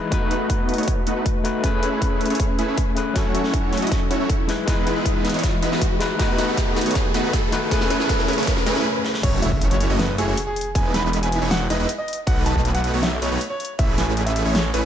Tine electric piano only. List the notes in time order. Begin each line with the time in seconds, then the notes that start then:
Already playing: E3 G#3 D#4 E4 B4 D#5
0.10 A3 D#4 F#4
0.14 B4
1.44 A3 D#4 F#4 B4
1.62 A3 C#4 G#4 B4
2.96 A3 C#4 G#4 B4
3.13 F#3 C#4 E4 A4
4.47 G#3 D#4 E4 B4
4.66 E3 G#3 B4 D#5
5.99 G#3 D#4 E4 B4
6.18 A3 D#4 F#4 B4
7.51 A3 D#4 F#4 B4
7.69 A3 C#4 G#4 B4